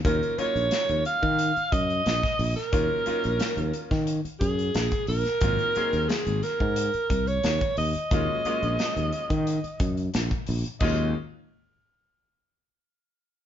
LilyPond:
<<
  \new Staff \with { instrumentName = "Alto saxophone" } { \time 4/4 \key ees \dorian \tempo 4 = 89 bes'8 des''4 f''4 ees''4~ ees''16 bes'16~ | bes'2 r8 aes'4 bes'8~ | bes'4 aes'8 bes'4~ bes'16 des''8. ees''8~ | ees''2. r4 |
ees''8 r2. r8 | }
  \new Staff \with { instrumentName = "Grand piano" } { \time 4/4 \key ees \dorian <ges bes des' ees' f'>8 <ges bes des' ees' f'>4. r2 | <ges bes des' ees' f'>8 <ges bes des' ees' f'>4. r2 | <ges bes c' ees' f'>8 <ges bes c' ees' aes'>4. r2 | <ges aes bes des' f'>8 <ges aes bes des' f'>4. r2 |
<ges aes bes des' f'>8 r2. r8 | }
  \new Staff \with { instrumentName = "Fretless electric bass" } { \clef bass \time 4/4 \key ees \dorian ees,16 r8 bes,,16 r16 ees,16 r16 ees8 r16 ges,8 bes,,16 r16 bes,,16 r16 | ees,16 r8 bes,,16 r16 ees,16 r16 ees8 r16 ges,8 bes,,16 r16 bes,,16 r16 | aes,,16 r8 ees,16 r16 aes,,16 r16 aes,8 r16 c,8 ees,16 r16 ees,16 r16 | ees,16 r8 bes,,16 r16 ees,16 r16 ees8 r16 ges,8 bes,,16 r16 bes,,16 r16 |
ees,8 r2. r8 | }
  \new DrumStaff \with { instrumentName = "Drums" } \drummode { \time 4/4 <hh bd>16 hh16 hh16 hh16 <hh sn>16 hh16 hh16 bd16 hh16 hh16 <hh bd>16 hh16 <hh sn>16 <hh bd sn>16 hho16 <hh sn>16 | <hh bd>8 hh16 hh16 <hh sn>16 hh16 hh16 <hh bd sn>16 hh16 hh16 <hh bd>16 hh16 <hh sn>16 <hh bd>16 hho16 <hh sn>16 | <hh bd>16 hh16 hh16 hh16 <hh sn>16 hh16 <hh sn>16 bd16 hh16 hh16 <hh bd>16 hh16 <hh sn>16 <hh bd>16 hho16 hh16 | <hh bd>8 hh16 hh16 <hh sn>16 hh16 hh16 <hh bd>16 hh16 hh16 <hh bd>16 hh16 <hh sn>16 <hh bd>16 hho16 hh16 |
<cymc bd>4 r4 r4 r4 | }
>>